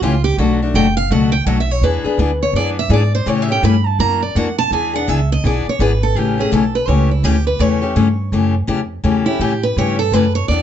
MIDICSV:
0, 0, Header, 1, 5, 480
1, 0, Start_track
1, 0, Tempo, 361011
1, 511, Time_signature, 4, 2, 24, 8
1, 14122, End_track
2, 0, Start_track
2, 0, Title_t, "Steel-string acoustic guitar"
2, 0, Program_c, 0, 25
2, 43, Note_on_c, 0, 65, 71
2, 315, Note_off_c, 0, 65, 0
2, 320, Note_on_c, 0, 67, 93
2, 503, Note_off_c, 0, 67, 0
2, 510, Note_on_c, 0, 66, 75
2, 687, Note_off_c, 0, 66, 0
2, 1001, Note_on_c, 0, 79, 84
2, 1281, Note_off_c, 0, 79, 0
2, 1287, Note_on_c, 0, 77, 92
2, 1466, Note_off_c, 0, 77, 0
2, 1484, Note_on_c, 0, 78, 87
2, 1748, Note_off_c, 0, 78, 0
2, 1754, Note_on_c, 0, 79, 98
2, 1940, Note_off_c, 0, 79, 0
2, 1947, Note_on_c, 0, 78, 79
2, 2104, Note_off_c, 0, 78, 0
2, 2130, Note_on_c, 0, 76, 81
2, 2277, Note_off_c, 0, 76, 0
2, 2277, Note_on_c, 0, 73, 79
2, 2429, Note_off_c, 0, 73, 0
2, 2440, Note_on_c, 0, 71, 75
2, 3157, Note_off_c, 0, 71, 0
2, 3224, Note_on_c, 0, 73, 88
2, 3395, Note_off_c, 0, 73, 0
2, 3406, Note_on_c, 0, 74, 89
2, 3578, Note_off_c, 0, 74, 0
2, 3709, Note_on_c, 0, 76, 91
2, 3878, Note_off_c, 0, 76, 0
2, 3900, Note_on_c, 0, 74, 77
2, 4171, Note_off_c, 0, 74, 0
2, 4184, Note_on_c, 0, 72, 98
2, 4359, Note_off_c, 0, 72, 0
2, 4359, Note_on_c, 0, 73, 83
2, 4547, Note_off_c, 0, 73, 0
2, 4547, Note_on_c, 0, 76, 80
2, 4671, Note_off_c, 0, 76, 0
2, 4676, Note_on_c, 0, 79, 80
2, 4829, Note_off_c, 0, 79, 0
2, 4849, Note_on_c, 0, 83, 110
2, 5137, Note_off_c, 0, 83, 0
2, 5137, Note_on_c, 0, 81, 102
2, 5311, Note_off_c, 0, 81, 0
2, 5318, Note_on_c, 0, 82, 109
2, 5600, Note_off_c, 0, 82, 0
2, 5617, Note_on_c, 0, 74, 72
2, 5792, Note_off_c, 0, 74, 0
2, 5798, Note_on_c, 0, 78, 84
2, 6080, Note_off_c, 0, 78, 0
2, 6096, Note_on_c, 0, 81, 112
2, 6271, Note_off_c, 0, 81, 0
2, 6289, Note_on_c, 0, 80, 88
2, 6565, Note_off_c, 0, 80, 0
2, 6589, Note_on_c, 0, 78, 90
2, 6768, Note_off_c, 0, 78, 0
2, 6768, Note_on_c, 0, 76, 93
2, 7045, Note_off_c, 0, 76, 0
2, 7077, Note_on_c, 0, 75, 95
2, 7241, Note_off_c, 0, 75, 0
2, 7265, Note_on_c, 0, 74, 83
2, 7534, Note_off_c, 0, 74, 0
2, 7569, Note_on_c, 0, 73, 87
2, 7727, Note_off_c, 0, 73, 0
2, 7733, Note_on_c, 0, 71, 81
2, 8007, Note_off_c, 0, 71, 0
2, 8019, Note_on_c, 0, 69, 86
2, 8216, Note_off_c, 0, 69, 0
2, 8216, Note_on_c, 0, 67, 68
2, 8489, Note_off_c, 0, 67, 0
2, 8516, Note_on_c, 0, 68, 77
2, 8681, Note_off_c, 0, 68, 0
2, 8687, Note_on_c, 0, 69, 78
2, 8964, Note_off_c, 0, 69, 0
2, 8976, Note_on_c, 0, 71, 76
2, 9146, Note_off_c, 0, 71, 0
2, 9146, Note_on_c, 0, 73, 81
2, 9433, Note_off_c, 0, 73, 0
2, 9457, Note_on_c, 0, 64, 45
2, 9635, Note_off_c, 0, 64, 0
2, 9635, Note_on_c, 0, 67, 69
2, 9918, Note_off_c, 0, 67, 0
2, 9929, Note_on_c, 0, 71, 80
2, 10109, Note_off_c, 0, 71, 0
2, 10109, Note_on_c, 0, 73, 68
2, 11069, Note_off_c, 0, 73, 0
2, 12309, Note_on_c, 0, 64, 74
2, 12496, Note_off_c, 0, 64, 0
2, 12513, Note_on_c, 0, 67, 75
2, 12797, Note_off_c, 0, 67, 0
2, 12809, Note_on_c, 0, 71, 88
2, 12986, Note_off_c, 0, 71, 0
2, 13008, Note_on_c, 0, 73, 94
2, 13275, Note_off_c, 0, 73, 0
2, 13280, Note_on_c, 0, 69, 83
2, 13474, Note_off_c, 0, 69, 0
2, 13474, Note_on_c, 0, 71, 85
2, 13757, Note_off_c, 0, 71, 0
2, 13762, Note_on_c, 0, 73, 95
2, 13931, Note_off_c, 0, 73, 0
2, 13936, Note_on_c, 0, 74, 87
2, 14122, Note_off_c, 0, 74, 0
2, 14122, End_track
3, 0, Start_track
3, 0, Title_t, "Steel-string acoustic guitar"
3, 0, Program_c, 1, 25
3, 33, Note_on_c, 1, 49, 85
3, 34, Note_on_c, 1, 57, 90
3, 38, Note_on_c, 1, 52, 90
3, 40, Note_on_c, 1, 61, 87
3, 45, Note_on_c, 1, 67, 90
3, 178, Note_off_c, 1, 49, 0
3, 179, Note_off_c, 1, 57, 0
3, 181, Note_off_c, 1, 52, 0
3, 182, Note_off_c, 1, 61, 0
3, 184, Note_off_c, 1, 67, 0
3, 511, Note_on_c, 1, 47, 67
3, 516, Note_on_c, 1, 54, 75
3, 518, Note_on_c, 1, 57, 70
3, 522, Note_on_c, 1, 62, 74
3, 523, Note_on_c, 1, 66, 74
3, 788, Note_off_c, 1, 47, 0
3, 791, Note_off_c, 1, 54, 0
3, 792, Note_off_c, 1, 57, 0
3, 793, Note_off_c, 1, 62, 0
3, 794, Note_off_c, 1, 66, 0
3, 830, Note_on_c, 1, 66, 59
3, 836, Note_on_c, 1, 62, 55
3, 852, Note_on_c, 1, 57, 44
3, 989, Note_off_c, 1, 57, 0
3, 992, Note_off_c, 1, 62, 0
3, 996, Note_off_c, 1, 66, 0
3, 996, Note_on_c, 1, 47, 86
3, 999, Note_on_c, 1, 54, 86
3, 1005, Note_on_c, 1, 57, 84
3, 1008, Note_on_c, 1, 62, 91
3, 1011, Note_on_c, 1, 66, 89
3, 1140, Note_off_c, 1, 47, 0
3, 1142, Note_off_c, 1, 54, 0
3, 1145, Note_off_c, 1, 57, 0
3, 1146, Note_off_c, 1, 62, 0
3, 1148, Note_off_c, 1, 66, 0
3, 1477, Note_on_c, 1, 47, 72
3, 1481, Note_on_c, 1, 54, 73
3, 1483, Note_on_c, 1, 57, 76
3, 1489, Note_on_c, 1, 62, 74
3, 1492, Note_on_c, 1, 66, 74
3, 1751, Note_off_c, 1, 47, 0
3, 1753, Note_off_c, 1, 54, 0
3, 1754, Note_off_c, 1, 57, 0
3, 1757, Note_off_c, 1, 62, 0
3, 1759, Note_off_c, 1, 66, 0
3, 1950, Note_on_c, 1, 47, 85
3, 1950, Note_on_c, 1, 54, 91
3, 1959, Note_on_c, 1, 62, 89
3, 1960, Note_on_c, 1, 57, 87
3, 1960, Note_on_c, 1, 66, 87
3, 2097, Note_off_c, 1, 47, 0
3, 2097, Note_off_c, 1, 54, 0
3, 2102, Note_off_c, 1, 57, 0
3, 2102, Note_off_c, 1, 62, 0
3, 2102, Note_off_c, 1, 66, 0
3, 2435, Note_on_c, 1, 52, 69
3, 2438, Note_on_c, 1, 59, 66
3, 2448, Note_on_c, 1, 62, 78
3, 2451, Note_on_c, 1, 68, 81
3, 2702, Note_off_c, 1, 68, 0
3, 2710, Note_off_c, 1, 52, 0
3, 2712, Note_off_c, 1, 59, 0
3, 2717, Note_off_c, 1, 62, 0
3, 2718, Note_on_c, 1, 68, 64
3, 2736, Note_on_c, 1, 62, 58
3, 2743, Note_on_c, 1, 59, 44
3, 2895, Note_off_c, 1, 59, 0
3, 2900, Note_off_c, 1, 68, 0
3, 2901, Note_off_c, 1, 62, 0
3, 2910, Note_on_c, 1, 59, 83
3, 2911, Note_on_c, 1, 52, 77
3, 2917, Note_on_c, 1, 62, 85
3, 2923, Note_on_c, 1, 68, 92
3, 3058, Note_off_c, 1, 52, 0
3, 3058, Note_off_c, 1, 59, 0
3, 3061, Note_off_c, 1, 62, 0
3, 3064, Note_off_c, 1, 68, 0
3, 3396, Note_on_c, 1, 52, 63
3, 3405, Note_on_c, 1, 59, 77
3, 3408, Note_on_c, 1, 62, 74
3, 3409, Note_on_c, 1, 68, 73
3, 3671, Note_off_c, 1, 52, 0
3, 3675, Note_off_c, 1, 59, 0
3, 3677, Note_off_c, 1, 62, 0
3, 3677, Note_off_c, 1, 68, 0
3, 3852, Note_on_c, 1, 52, 85
3, 3860, Note_on_c, 1, 59, 81
3, 3860, Note_on_c, 1, 62, 90
3, 3867, Note_on_c, 1, 68, 98
3, 4008, Note_off_c, 1, 52, 0
3, 4012, Note_off_c, 1, 59, 0
3, 4012, Note_off_c, 1, 62, 0
3, 4016, Note_off_c, 1, 68, 0
3, 4335, Note_on_c, 1, 49, 68
3, 4342, Note_on_c, 1, 52, 75
3, 4348, Note_on_c, 1, 57, 73
3, 4348, Note_on_c, 1, 61, 69
3, 4351, Note_on_c, 1, 67, 79
3, 4619, Note_off_c, 1, 67, 0
3, 4620, Note_off_c, 1, 49, 0
3, 4623, Note_off_c, 1, 52, 0
3, 4626, Note_off_c, 1, 57, 0
3, 4626, Note_off_c, 1, 61, 0
3, 4635, Note_on_c, 1, 67, 63
3, 4651, Note_on_c, 1, 61, 54
3, 4665, Note_on_c, 1, 57, 53
3, 4815, Note_off_c, 1, 57, 0
3, 4819, Note_off_c, 1, 61, 0
3, 4819, Note_off_c, 1, 67, 0
3, 4828, Note_on_c, 1, 49, 79
3, 4831, Note_on_c, 1, 57, 86
3, 4835, Note_on_c, 1, 61, 87
3, 4838, Note_on_c, 1, 52, 84
3, 4842, Note_on_c, 1, 67, 93
3, 4976, Note_off_c, 1, 49, 0
3, 4978, Note_off_c, 1, 57, 0
3, 4979, Note_off_c, 1, 61, 0
3, 4981, Note_off_c, 1, 52, 0
3, 4983, Note_off_c, 1, 67, 0
3, 5314, Note_on_c, 1, 52, 67
3, 5319, Note_on_c, 1, 58, 76
3, 5326, Note_on_c, 1, 62, 76
3, 5329, Note_on_c, 1, 66, 84
3, 5589, Note_off_c, 1, 52, 0
3, 5592, Note_off_c, 1, 58, 0
3, 5595, Note_off_c, 1, 62, 0
3, 5597, Note_off_c, 1, 66, 0
3, 5803, Note_on_c, 1, 52, 80
3, 5807, Note_on_c, 1, 58, 92
3, 5807, Note_on_c, 1, 62, 91
3, 5813, Note_on_c, 1, 66, 87
3, 5944, Note_off_c, 1, 52, 0
3, 5945, Note_off_c, 1, 58, 0
3, 5946, Note_off_c, 1, 62, 0
3, 5948, Note_off_c, 1, 66, 0
3, 6277, Note_on_c, 1, 52, 74
3, 6284, Note_on_c, 1, 59, 70
3, 6289, Note_on_c, 1, 62, 73
3, 6294, Note_on_c, 1, 68, 82
3, 6546, Note_off_c, 1, 68, 0
3, 6550, Note_off_c, 1, 52, 0
3, 6554, Note_off_c, 1, 59, 0
3, 6557, Note_off_c, 1, 62, 0
3, 6562, Note_on_c, 1, 68, 61
3, 6581, Note_on_c, 1, 62, 57
3, 6591, Note_on_c, 1, 59, 48
3, 6739, Note_off_c, 1, 59, 0
3, 6742, Note_off_c, 1, 68, 0
3, 6747, Note_off_c, 1, 62, 0
3, 6748, Note_on_c, 1, 52, 92
3, 6755, Note_on_c, 1, 59, 86
3, 6761, Note_on_c, 1, 68, 92
3, 6763, Note_on_c, 1, 62, 84
3, 6896, Note_off_c, 1, 52, 0
3, 6899, Note_off_c, 1, 59, 0
3, 6902, Note_off_c, 1, 68, 0
3, 6903, Note_off_c, 1, 62, 0
3, 7239, Note_on_c, 1, 52, 68
3, 7247, Note_on_c, 1, 59, 76
3, 7249, Note_on_c, 1, 62, 74
3, 7256, Note_on_c, 1, 68, 76
3, 7511, Note_off_c, 1, 52, 0
3, 7515, Note_off_c, 1, 59, 0
3, 7516, Note_off_c, 1, 62, 0
3, 7520, Note_off_c, 1, 68, 0
3, 7713, Note_on_c, 1, 52, 91
3, 7716, Note_on_c, 1, 59, 93
3, 7724, Note_on_c, 1, 62, 94
3, 7728, Note_on_c, 1, 68, 96
3, 7858, Note_off_c, 1, 52, 0
3, 7860, Note_off_c, 1, 59, 0
3, 7864, Note_off_c, 1, 62, 0
3, 7866, Note_off_c, 1, 68, 0
3, 8195, Note_on_c, 1, 49, 68
3, 8198, Note_on_c, 1, 52, 59
3, 8204, Note_on_c, 1, 57, 68
3, 8208, Note_on_c, 1, 61, 67
3, 8208, Note_on_c, 1, 67, 68
3, 8465, Note_off_c, 1, 67, 0
3, 8470, Note_off_c, 1, 49, 0
3, 8471, Note_off_c, 1, 52, 0
3, 8474, Note_off_c, 1, 57, 0
3, 8476, Note_off_c, 1, 61, 0
3, 8481, Note_on_c, 1, 67, 54
3, 8498, Note_on_c, 1, 61, 48
3, 8509, Note_on_c, 1, 57, 45
3, 8653, Note_off_c, 1, 57, 0
3, 8661, Note_off_c, 1, 67, 0
3, 8663, Note_off_c, 1, 61, 0
3, 8664, Note_on_c, 1, 49, 79
3, 8668, Note_on_c, 1, 57, 82
3, 8674, Note_on_c, 1, 52, 88
3, 8678, Note_on_c, 1, 67, 91
3, 8679, Note_on_c, 1, 61, 85
3, 8814, Note_off_c, 1, 49, 0
3, 8816, Note_off_c, 1, 57, 0
3, 8819, Note_off_c, 1, 52, 0
3, 8821, Note_off_c, 1, 61, 0
3, 8821, Note_off_c, 1, 67, 0
3, 9142, Note_on_c, 1, 49, 67
3, 9146, Note_on_c, 1, 52, 59
3, 9148, Note_on_c, 1, 57, 70
3, 9158, Note_on_c, 1, 61, 72
3, 9158, Note_on_c, 1, 67, 75
3, 9423, Note_off_c, 1, 49, 0
3, 9425, Note_off_c, 1, 52, 0
3, 9426, Note_off_c, 1, 57, 0
3, 9431, Note_off_c, 1, 61, 0
3, 9431, Note_off_c, 1, 67, 0
3, 9623, Note_on_c, 1, 49, 75
3, 9625, Note_on_c, 1, 52, 79
3, 9631, Note_on_c, 1, 57, 90
3, 9634, Note_on_c, 1, 67, 94
3, 9636, Note_on_c, 1, 61, 82
3, 9773, Note_off_c, 1, 49, 0
3, 9774, Note_off_c, 1, 52, 0
3, 9777, Note_off_c, 1, 57, 0
3, 9778, Note_off_c, 1, 67, 0
3, 9779, Note_off_c, 1, 61, 0
3, 10095, Note_on_c, 1, 49, 61
3, 10103, Note_on_c, 1, 57, 69
3, 10107, Note_on_c, 1, 52, 68
3, 10112, Note_on_c, 1, 61, 70
3, 10117, Note_on_c, 1, 67, 76
3, 10377, Note_off_c, 1, 67, 0
3, 10379, Note_off_c, 1, 49, 0
3, 10384, Note_off_c, 1, 57, 0
3, 10385, Note_off_c, 1, 52, 0
3, 10388, Note_off_c, 1, 61, 0
3, 10393, Note_on_c, 1, 67, 56
3, 10407, Note_on_c, 1, 61, 51
3, 10417, Note_on_c, 1, 57, 51
3, 10570, Note_off_c, 1, 57, 0
3, 10570, Note_off_c, 1, 61, 0
3, 10573, Note_off_c, 1, 67, 0
3, 10582, Note_on_c, 1, 49, 88
3, 10583, Note_on_c, 1, 52, 78
3, 10585, Note_on_c, 1, 61, 92
3, 10586, Note_on_c, 1, 57, 91
3, 10589, Note_on_c, 1, 67, 90
3, 10732, Note_off_c, 1, 49, 0
3, 10733, Note_off_c, 1, 52, 0
3, 10734, Note_off_c, 1, 61, 0
3, 10735, Note_off_c, 1, 57, 0
3, 10736, Note_off_c, 1, 67, 0
3, 11072, Note_on_c, 1, 49, 64
3, 11075, Note_on_c, 1, 52, 68
3, 11078, Note_on_c, 1, 57, 74
3, 11080, Note_on_c, 1, 61, 70
3, 11087, Note_on_c, 1, 67, 78
3, 11347, Note_off_c, 1, 49, 0
3, 11349, Note_off_c, 1, 52, 0
3, 11351, Note_off_c, 1, 57, 0
3, 11352, Note_off_c, 1, 61, 0
3, 11355, Note_off_c, 1, 67, 0
3, 11533, Note_on_c, 1, 49, 82
3, 11541, Note_on_c, 1, 57, 82
3, 11542, Note_on_c, 1, 52, 83
3, 11544, Note_on_c, 1, 61, 92
3, 11549, Note_on_c, 1, 67, 84
3, 11688, Note_off_c, 1, 49, 0
3, 11692, Note_off_c, 1, 52, 0
3, 11692, Note_off_c, 1, 57, 0
3, 11694, Note_off_c, 1, 61, 0
3, 11696, Note_off_c, 1, 67, 0
3, 12014, Note_on_c, 1, 52, 69
3, 12016, Note_on_c, 1, 49, 72
3, 12022, Note_on_c, 1, 57, 77
3, 12028, Note_on_c, 1, 61, 75
3, 12028, Note_on_c, 1, 67, 82
3, 12299, Note_off_c, 1, 49, 0
3, 12299, Note_off_c, 1, 52, 0
3, 12301, Note_off_c, 1, 67, 0
3, 12302, Note_off_c, 1, 57, 0
3, 12305, Note_off_c, 1, 61, 0
3, 12317, Note_on_c, 1, 67, 61
3, 12323, Note_on_c, 1, 61, 57
3, 12339, Note_on_c, 1, 57, 49
3, 12492, Note_off_c, 1, 61, 0
3, 12499, Note_off_c, 1, 57, 0
3, 12499, Note_off_c, 1, 67, 0
3, 12506, Note_on_c, 1, 49, 78
3, 12508, Note_on_c, 1, 61, 94
3, 12509, Note_on_c, 1, 52, 83
3, 12515, Note_on_c, 1, 57, 88
3, 12517, Note_on_c, 1, 67, 90
3, 12654, Note_off_c, 1, 49, 0
3, 12655, Note_off_c, 1, 61, 0
3, 12656, Note_off_c, 1, 52, 0
3, 12659, Note_off_c, 1, 57, 0
3, 12660, Note_off_c, 1, 67, 0
3, 12997, Note_on_c, 1, 49, 62
3, 12998, Note_on_c, 1, 52, 67
3, 13002, Note_on_c, 1, 57, 70
3, 13007, Note_on_c, 1, 67, 78
3, 13008, Note_on_c, 1, 61, 67
3, 13270, Note_off_c, 1, 49, 0
3, 13271, Note_off_c, 1, 52, 0
3, 13272, Note_off_c, 1, 57, 0
3, 13275, Note_off_c, 1, 61, 0
3, 13275, Note_off_c, 1, 67, 0
3, 13472, Note_on_c, 1, 49, 74
3, 13475, Note_on_c, 1, 57, 89
3, 13476, Note_on_c, 1, 52, 85
3, 13482, Note_on_c, 1, 67, 92
3, 13487, Note_on_c, 1, 61, 86
3, 13617, Note_off_c, 1, 49, 0
3, 13618, Note_off_c, 1, 57, 0
3, 13619, Note_off_c, 1, 52, 0
3, 13622, Note_off_c, 1, 67, 0
3, 13625, Note_off_c, 1, 61, 0
3, 13961, Note_on_c, 1, 52, 65
3, 13970, Note_on_c, 1, 59, 72
3, 13975, Note_on_c, 1, 62, 74
3, 13980, Note_on_c, 1, 67, 68
3, 14122, Note_off_c, 1, 52, 0
3, 14122, Note_off_c, 1, 59, 0
3, 14122, Note_off_c, 1, 62, 0
3, 14122, Note_off_c, 1, 67, 0
3, 14122, End_track
4, 0, Start_track
4, 0, Title_t, "Upright bass"
4, 0, Program_c, 2, 32
4, 21, Note_on_c, 2, 37, 83
4, 492, Note_off_c, 2, 37, 0
4, 504, Note_on_c, 2, 35, 83
4, 973, Note_off_c, 2, 35, 0
4, 985, Note_on_c, 2, 30, 80
4, 1454, Note_off_c, 2, 30, 0
4, 1468, Note_on_c, 2, 37, 91
4, 1935, Note_off_c, 2, 37, 0
4, 1943, Note_on_c, 2, 35, 93
4, 2404, Note_off_c, 2, 35, 0
4, 2412, Note_on_c, 2, 40, 79
4, 2695, Note_off_c, 2, 40, 0
4, 2895, Note_on_c, 2, 38, 88
4, 3361, Note_off_c, 2, 38, 0
4, 3369, Note_on_c, 2, 42, 89
4, 3841, Note_off_c, 2, 42, 0
4, 3849, Note_on_c, 2, 44, 91
4, 4326, Note_off_c, 2, 44, 0
4, 4340, Note_on_c, 2, 45, 77
4, 4811, Note_off_c, 2, 45, 0
4, 4825, Note_on_c, 2, 43, 92
4, 5293, Note_off_c, 2, 43, 0
4, 5302, Note_on_c, 2, 42, 87
4, 5772, Note_off_c, 2, 42, 0
4, 5787, Note_on_c, 2, 41, 95
4, 6251, Note_off_c, 2, 41, 0
4, 6259, Note_on_c, 2, 40, 86
4, 6730, Note_off_c, 2, 40, 0
4, 6754, Note_on_c, 2, 37, 88
4, 7218, Note_off_c, 2, 37, 0
4, 7230, Note_on_c, 2, 35, 97
4, 7504, Note_off_c, 2, 35, 0
4, 7701, Note_on_c, 2, 32, 89
4, 8171, Note_off_c, 2, 32, 0
4, 8180, Note_on_c, 2, 33, 77
4, 8651, Note_off_c, 2, 33, 0
4, 8667, Note_on_c, 2, 35, 80
4, 9134, Note_off_c, 2, 35, 0
4, 9145, Note_on_c, 2, 37, 85
4, 9606, Note_off_c, 2, 37, 0
4, 9614, Note_on_c, 2, 38, 82
4, 10087, Note_off_c, 2, 38, 0
4, 10098, Note_on_c, 2, 40, 78
4, 10569, Note_off_c, 2, 40, 0
4, 10581, Note_on_c, 2, 43, 80
4, 11051, Note_off_c, 2, 43, 0
4, 11063, Note_on_c, 2, 42, 86
4, 11532, Note_off_c, 2, 42, 0
4, 11540, Note_on_c, 2, 41, 85
4, 12006, Note_off_c, 2, 41, 0
4, 12014, Note_on_c, 2, 40, 83
4, 12483, Note_off_c, 2, 40, 0
4, 12491, Note_on_c, 2, 45, 88
4, 12965, Note_off_c, 2, 45, 0
4, 12983, Note_on_c, 2, 43, 88
4, 13448, Note_off_c, 2, 43, 0
4, 13456, Note_on_c, 2, 42, 88
4, 13928, Note_off_c, 2, 42, 0
4, 13943, Note_on_c, 2, 40, 81
4, 14122, Note_off_c, 2, 40, 0
4, 14122, End_track
5, 0, Start_track
5, 0, Title_t, "Muted upright bass strokes"
5, 2715, Note_on_c, 9, 29, 42
5, 2848, Note_off_c, 9, 29, 0
5, 7524, Note_on_c, 9, 29, 42
5, 7657, Note_off_c, 9, 29, 0
5, 14122, End_track
0, 0, End_of_file